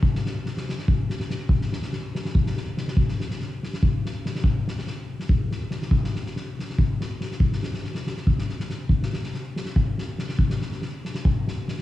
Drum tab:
SD |-oo-oooo--ooo-|-oooo-oo-oo-oo|-oooo-oo--o-oo|--ooo--o--o-oo|
BD |o-------o-----|o-------o-----|o-------o-----|o-------o-----|

SD |-oooo-oo--o-oo|-ooooooo-oooo-|-oooo-oo--o-oo|-oooo-oo--o-oo|
BD |o-------o-----|o-------o-----|o-------o-----|o-------o-----|